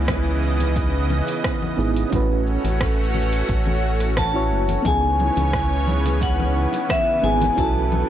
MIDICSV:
0, 0, Header, 1, 6, 480
1, 0, Start_track
1, 0, Key_signature, 4, "minor"
1, 0, Tempo, 681818
1, 1495, Time_signature, 4, 2, 24, 8
1, 5696, End_track
2, 0, Start_track
2, 0, Title_t, "Vibraphone"
2, 0, Program_c, 0, 11
2, 2942, Note_on_c, 0, 81, 104
2, 3422, Note_on_c, 0, 80, 96
2, 3433, Note_off_c, 0, 81, 0
2, 4111, Note_off_c, 0, 80, 0
2, 4384, Note_on_c, 0, 78, 89
2, 4860, Note_on_c, 0, 76, 94
2, 4874, Note_off_c, 0, 78, 0
2, 5095, Note_on_c, 0, 80, 100
2, 5105, Note_off_c, 0, 76, 0
2, 5340, Note_on_c, 0, 81, 106
2, 5343, Note_off_c, 0, 80, 0
2, 5696, Note_off_c, 0, 81, 0
2, 5696, End_track
3, 0, Start_track
3, 0, Title_t, "FM electric piano"
3, 0, Program_c, 1, 5
3, 0, Control_c, 1, 64, 127
3, 0, Note_on_c, 1, 59, 85
3, 0, Note_on_c, 1, 63, 81
3, 0, Note_on_c, 1, 64, 82
3, 0, Note_on_c, 1, 68, 99
3, 1219, Note_off_c, 1, 59, 0
3, 1226, Note_off_c, 1, 63, 0
3, 1232, Note_off_c, 1, 64, 0
3, 1238, Note_off_c, 1, 68, 0
3, 1245, Note_on_c, 1, 59, 81
3, 1252, Note_on_c, 1, 63, 70
3, 1258, Note_on_c, 1, 64, 76
3, 1265, Note_on_c, 1, 68, 86
3, 1463, Note_off_c, 1, 59, 0
3, 1467, Note_off_c, 1, 63, 0
3, 1470, Note_off_c, 1, 64, 0
3, 1473, Note_off_c, 1, 68, 0
3, 1477, Note_on_c, 1, 61, 97
3, 1490, Note_on_c, 1, 64, 85
3, 1503, Note_on_c, 1, 66, 92
3, 1504, Control_c, 1, 64, 0
3, 1516, Note_on_c, 1, 71, 103
3, 1621, Control_c, 1, 64, 127
3, 2659, Note_off_c, 1, 61, 0
3, 2666, Note_off_c, 1, 64, 0
3, 2672, Note_off_c, 1, 66, 0
3, 2679, Note_off_c, 1, 71, 0
3, 3050, Note_on_c, 1, 61, 80
3, 3057, Note_on_c, 1, 64, 78
3, 3063, Note_on_c, 1, 66, 78
3, 3069, Note_on_c, 1, 73, 99
3, 3382, Note_off_c, 1, 61, 0
3, 3386, Note_off_c, 1, 64, 0
3, 3389, Note_off_c, 1, 66, 0
3, 3392, Note_off_c, 1, 73, 0
3, 3394, Note_on_c, 1, 59, 90
3, 3408, Note_on_c, 1, 63, 81
3, 3421, Note_on_c, 1, 64, 83
3, 3424, Control_c, 1, 64, 0
3, 3433, Note_on_c, 1, 68, 105
3, 3553, Control_c, 1, 64, 127
3, 5058, Note_off_c, 1, 59, 0
3, 5065, Note_off_c, 1, 63, 0
3, 5071, Note_off_c, 1, 64, 0
3, 5077, Note_off_c, 1, 68, 0
3, 5084, Note_on_c, 1, 59, 81
3, 5090, Note_on_c, 1, 63, 68
3, 5098, Note_on_c, 1, 64, 73
3, 5104, Note_on_c, 1, 68, 88
3, 5303, Note_off_c, 1, 59, 0
3, 5305, Note_off_c, 1, 63, 0
3, 5309, Note_off_c, 1, 64, 0
3, 5312, Note_off_c, 1, 68, 0
3, 5315, Note_on_c, 1, 61, 92
3, 5329, Note_on_c, 1, 64, 87
3, 5341, Note_on_c, 1, 66, 90
3, 5343, Control_c, 1, 64, 0
3, 5354, Note_on_c, 1, 69, 99
3, 5466, Control_c, 1, 64, 127
3, 5696, Note_off_c, 1, 61, 0
3, 5696, Note_off_c, 1, 64, 0
3, 5696, Note_off_c, 1, 66, 0
3, 5696, Note_off_c, 1, 69, 0
3, 5696, End_track
4, 0, Start_track
4, 0, Title_t, "Analog synth pad"
4, 0, Program_c, 2, 89
4, 0, Note_on_c, 2, 49, 80
4, 0, Note_on_c, 2, 52, 89
4, 0, Note_on_c, 2, 59, 68
4, 0, Note_on_c, 2, 75, 73
4, 1476, Note_off_c, 2, 49, 0
4, 1476, Note_off_c, 2, 52, 0
4, 1476, Note_off_c, 2, 59, 0
4, 1476, Note_off_c, 2, 75, 0
4, 1496, Note_on_c, 2, 57, 81
4, 1496, Note_on_c, 2, 61, 72
4, 1498, Note_on_c, 2, 66, 84
4, 3397, Note_off_c, 2, 57, 0
4, 3397, Note_off_c, 2, 61, 0
4, 3397, Note_off_c, 2, 66, 0
4, 3413, Note_on_c, 2, 73, 73
4, 3414, Note_on_c, 2, 59, 68
4, 3415, Note_on_c, 2, 49, 84
4, 3415, Note_on_c, 2, 52, 90
4, 5315, Note_off_c, 2, 73, 0
4, 5316, Note_off_c, 2, 49, 0
4, 5329, Note_on_c, 2, 57, 84
4, 5696, Note_off_c, 2, 52, 0
4, 5696, Note_off_c, 2, 57, 0
4, 5696, Note_off_c, 2, 59, 0
4, 5696, End_track
5, 0, Start_track
5, 0, Title_t, "Analog synth bass"
5, 0, Program_c, 3, 38
5, 0, Note_on_c, 3, 37, 92
5, 858, Note_off_c, 3, 37, 0
5, 1254, Note_on_c, 3, 32, 90
5, 1446, Note_off_c, 3, 32, 0
5, 1495, Note_on_c, 3, 33, 96
5, 1818, Note_off_c, 3, 33, 0
5, 1861, Note_on_c, 3, 33, 86
5, 2416, Note_off_c, 3, 33, 0
5, 2455, Note_on_c, 3, 33, 98
5, 3175, Note_on_c, 3, 30, 96
5, 3186, Note_off_c, 3, 33, 0
5, 3367, Note_off_c, 3, 30, 0
5, 3414, Note_on_c, 3, 37, 94
5, 3738, Note_off_c, 3, 37, 0
5, 3780, Note_on_c, 3, 37, 92
5, 4698, Note_off_c, 3, 37, 0
5, 5093, Note_on_c, 3, 32, 91
5, 5286, Note_off_c, 3, 32, 0
5, 5334, Note_on_c, 3, 35, 95
5, 5658, Note_off_c, 3, 35, 0
5, 5696, End_track
6, 0, Start_track
6, 0, Title_t, "Drums"
6, 55, Note_on_c, 9, 36, 118
6, 57, Note_on_c, 9, 37, 102
6, 57, Note_on_c, 9, 46, 44
6, 57, Note_on_c, 9, 64, 75
6, 58, Note_on_c, 9, 69, 46
6, 126, Note_off_c, 9, 36, 0
6, 127, Note_off_c, 9, 37, 0
6, 127, Note_off_c, 9, 46, 0
6, 127, Note_off_c, 9, 64, 0
6, 129, Note_off_c, 9, 69, 0
6, 184, Note_on_c, 9, 69, 24
6, 255, Note_off_c, 9, 69, 0
6, 299, Note_on_c, 9, 69, 86
6, 369, Note_off_c, 9, 69, 0
6, 425, Note_on_c, 9, 46, 56
6, 425, Note_on_c, 9, 64, 78
6, 426, Note_on_c, 9, 69, 36
6, 495, Note_off_c, 9, 46, 0
6, 495, Note_off_c, 9, 64, 0
6, 497, Note_off_c, 9, 69, 0
6, 535, Note_on_c, 9, 36, 105
6, 538, Note_on_c, 9, 46, 44
6, 539, Note_on_c, 9, 69, 47
6, 606, Note_off_c, 9, 36, 0
6, 608, Note_off_c, 9, 46, 0
6, 609, Note_off_c, 9, 69, 0
6, 665, Note_on_c, 9, 69, 25
6, 736, Note_off_c, 9, 69, 0
6, 777, Note_on_c, 9, 64, 80
6, 778, Note_on_c, 9, 69, 89
6, 847, Note_off_c, 9, 64, 0
6, 849, Note_off_c, 9, 69, 0
6, 902, Note_on_c, 9, 46, 56
6, 904, Note_on_c, 9, 69, 32
6, 973, Note_off_c, 9, 46, 0
6, 974, Note_off_c, 9, 69, 0
6, 1016, Note_on_c, 9, 36, 102
6, 1016, Note_on_c, 9, 37, 106
6, 1016, Note_on_c, 9, 46, 40
6, 1017, Note_on_c, 9, 69, 47
6, 1086, Note_off_c, 9, 36, 0
6, 1086, Note_off_c, 9, 37, 0
6, 1086, Note_off_c, 9, 46, 0
6, 1088, Note_off_c, 9, 69, 0
6, 1143, Note_on_c, 9, 64, 80
6, 1144, Note_on_c, 9, 69, 23
6, 1213, Note_off_c, 9, 64, 0
6, 1215, Note_off_c, 9, 69, 0
6, 1259, Note_on_c, 9, 69, 86
6, 1330, Note_off_c, 9, 69, 0
6, 1383, Note_on_c, 9, 46, 52
6, 1385, Note_on_c, 9, 69, 37
6, 1454, Note_off_c, 9, 46, 0
6, 1455, Note_off_c, 9, 69, 0
6, 1496, Note_on_c, 9, 36, 106
6, 1497, Note_on_c, 9, 46, 44
6, 1497, Note_on_c, 9, 64, 79
6, 1499, Note_on_c, 9, 69, 48
6, 1566, Note_off_c, 9, 36, 0
6, 1568, Note_off_c, 9, 46, 0
6, 1568, Note_off_c, 9, 64, 0
6, 1569, Note_off_c, 9, 69, 0
6, 1625, Note_on_c, 9, 69, 24
6, 1695, Note_off_c, 9, 69, 0
6, 1740, Note_on_c, 9, 69, 85
6, 1810, Note_off_c, 9, 69, 0
6, 1864, Note_on_c, 9, 46, 54
6, 1864, Note_on_c, 9, 64, 73
6, 1865, Note_on_c, 9, 69, 34
6, 1934, Note_off_c, 9, 46, 0
6, 1934, Note_off_c, 9, 64, 0
6, 1936, Note_off_c, 9, 69, 0
6, 1975, Note_on_c, 9, 36, 115
6, 1976, Note_on_c, 9, 37, 102
6, 1976, Note_on_c, 9, 46, 41
6, 1977, Note_on_c, 9, 69, 48
6, 2046, Note_off_c, 9, 36, 0
6, 2046, Note_off_c, 9, 37, 0
6, 2046, Note_off_c, 9, 46, 0
6, 2048, Note_off_c, 9, 69, 0
6, 2104, Note_on_c, 9, 69, 22
6, 2174, Note_off_c, 9, 69, 0
6, 2214, Note_on_c, 9, 64, 79
6, 2215, Note_on_c, 9, 69, 83
6, 2284, Note_off_c, 9, 64, 0
6, 2286, Note_off_c, 9, 69, 0
6, 2342, Note_on_c, 9, 46, 54
6, 2344, Note_on_c, 9, 69, 37
6, 2413, Note_off_c, 9, 46, 0
6, 2414, Note_off_c, 9, 69, 0
6, 2455, Note_on_c, 9, 36, 98
6, 2455, Note_on_c, 9, 46, 46
6, 2457, Note_on_c, 9, 69, 48
6, 2526, Note_off_c, 9, 36, 0
6, 2526, Note_off_c, 9, 46, 0
6, 2527, Note_off_c, 9, 69, 0
6, 2581, Note_on_c, 9, 64, 80
6, 2582, Note_on_c, 9, 69, 25
6, 2651, Note_off_c, 9, 64, 0
6, 2653, Note_off_c, 9, 69, 0
6, 2696, Note_on_c, 9, 69, 79
6, 2766, Note_off_c, 9, 69, 0
6, 2819, Note_on_c, 9, 37, 29
6, 2819, Note_on_c, 9, 46, 52
6, 2820, Note_on_c, 9, 69, 31
6, 2889, Note_off_c, 9, 37, 0
6, 2889, Note_off_c, 9, 46, 0
6, 2891, Note_off_c, 9, 69, 0
6, 2935, Note_on_c, 9, 36, 106
6, 2935, Note_on_c, 9, 37, 102
6, 2935, Note_on_c, 9, 46, 42
6, 2935, Note_on_c, 9, 64, 76
6, 2936, Note_on_c, 9, 69, 44
6, 3005, Note_off_c, 9, 36, 0
6, 3005, Note_off_c, 9, 37, 0
6, 3005, Note_off_c, 9, 46, 0
6, 3005, Note_off_c, 9, 64, 0
6, 3007, Note_off_c, 9, 69, 0
6, 3061, Note_on_c, 9, 69, 23
6, 3132, Note_off_c, 9, 69, 0
6, 3174, Note_on_c, 9, 69, 80
6, 3245, Note_off_c, 9, 69, 0
6, 3301, Note_on_c, 9, 46, 52
6, 3301, Note_on_c, 9, 64, 73
6, 3302, Note_on_c, 9, 69, 34
6, 3371, Note_off_c, 9, 46, 0
6, 3371, Note_off_c, 9, 64, 0
6, 3373, Note_off_c, 9, 69, 0
6, 3414, Note_on_c, 9, 36, 105
6, 3416, Note_on_c, 9, 46, 47
6, 3416, Note_on_c, 9, 64, 85
6, 3418, Note_on_c, 9, 69, 45
6, 3485, Note_off_c, 9, 36, 0
6, 3487, Note_off_c, 9, 46, 0
6, 3487, Note_off_c, 9, 64, 0
6, 3488, Note_off_c, 9, 69, 0
6, 3543, Note_on_c, 9, 69, 24
6, 3613, Note_off_c, 9, 69, 0
6, 3657, Note_on_c, 9, 69, 80
6, 3660, Note_on_c, 9, 63, 85
6, 3728, Note_off_c, 9, 69, 0
6, 3730, Note_off_c, 9, 63, 0
6, 3781, Note_on_c, 9, 46, 51
6, 3781, Note_on_c, 9, 64, 81
6, 3783, Note_on_c, 9, 69, 33
6, 3852, Note_off_c, 9, 46, 0
6, 3852, Note_off_c, 9, 64, 0
6, 3853, Note_off_c, 9, 69, 0
6, 3894, Note_on_c, 9, 36, 111
6, 3896, Note_on_c, 9, 37, 88
6, 3896, Note_on_c, 9, 46, 40
6, 3897, Note_on_c, 9, 69, 41
6, 3964, Note_off_c, 9, 36, 0
6, 3966, Note_off_c, 9, 37, 0
6, 3966, Note_off_c, 9, 46, 0
6, 3968, Note_off_c, 9, 69, 0
6, 4024, Note_on_c, 9, 69, 23
6, 4095, Note_off_c, 9, 69, 0
6, 4137, Note_on_c, 9, 63, 63
6, 4137, Note_on_c, 9, 64, 80
6, 4138, Note_on_c, 9, 69, 80
6, 4207, Note_off_c, 9, 63, 0
6, 4207, Note_off_c, 9, 64, 0
6, 4209, Note_off_c, 9, 69, 0
6, 4260, Note_on_c, 9, 64, 70
6, 4264, Note_on_c, 9, 46, 55
6, 4265, Note_on_c, 9, 62, 59
6, 4266, Note_on_c, 9, 69, 35
6, 4330, Note_off_c, 9, 64, 0
6, 4335, Note_off_c, 9, 46, 0
6, 4335, Note_off_c, 9, 62, 0
6, 4336, Note_off_c, 9, 69, 0
6, 4374, Note_on_c, 9, 36, 98
6, 4378, Note_on_c, 9, 46, 47
6, 4379, Note_on_c, 9, 69, 49
6, 4444, Note_off_c, 9, 36, 0
6, 4448, Note_off_c, 9, 46, 0
6, 4450, Note_off_c, 9, 69, 0
6, 4503, Note_on_c, 9, 64, 83
6, 4504, Note_on_c, 9, 69, 23
6, 4573, Note_off_c, 9, 64, 0
6, 4575, Note_off_c, 9, 69, 0
6, 4619, Note_on_c, 9, 69, 81
6, 4689, Note_off_c, 9, 69, 0
6, 4736, Note_on_c, 9, 62, 60
6, 4744, Note_on_c, 9, 46, 53
6, 4745, Note_on_c, 9, 69, 31
6, 4807, Note_off_c, 9, 62, 0
6, 4814, Note_off_c, 9, 46, 0
6, 4816, Note_off_c, 9, 69, 0
6, 4853, Note_on_c, 9, 36, 100
6, 4857, Note_on_c, 9, 37, 97
6, 4857, Note_on_c, 9, 46, 45
6, 4857, Note_on_c, 9, 64, 77
6, 4858, Note_on_c, 9, 69, 45
6, 4924, Note_off_c, 9, 36, 0
6, 4927, Note_off_c, 9, 37, 0
6, 4927, Note_off_c, 9, 46, 0
6, 4927, Note_off_c, 9, 64, 0
6, 4929, Note_off_c, 9, 69, 0
6, 4985, Note_on_c, 9, 69, 22
6, 5055, Note_off_c, 9, 69, 0
6, 5095, Note_on_c, 9, 62, 50
6, 5097, Note_on_c, 9, 69, 81
6, 5165, Note_off_c, 9, 62, 0
6, 5167, Note_off_c, 9, 69, 0
6, 5219, Note_on_c, 9, 64, 83
6, 5222, Note_off_c, 9, 64, 0
6, 5222, Note_on_c, 9, 46, 55
6, 5222, Note_on_c, 9, 64, 82
6, 5224, Note_on_c, 9, 69, 31
6, 5292, Note_off_c, 9, 46, 0
6, 5292, Note_off_c, 9, 64, 0
6, 5294, Note_off_c, 9, 69, 0
6, 5333, Note_on_c, 9, 36, 98
6, 5336, Note_on_c, 9, 46, 45
6, 5337, Note_on_c, 9, 69, 42
6, 5404, Note_off_c, 9, 36, 0
6, 5406, Note_off_c, 9, 46, 0
6, 5408, Note_off_c, 9, 69, 0
6, 5465, Note_on_c, 9, 69, 23
6, 5535, Note_off_c, 9, 69, 0
6, 5574, Note_on_c, 9, 63, 84
6, 5577, Note_on_c, 9, 64, 82
6, 5578, Note_on_c, 9, 69, 75
6, 5644, Note_off_c, 9, 63, 0
6, 5647, Note_off_c, 9, 64, 0
6, 5649, Note_off_c, 9, 69, 0
6, 5696, End_track
0, 0, End_of_file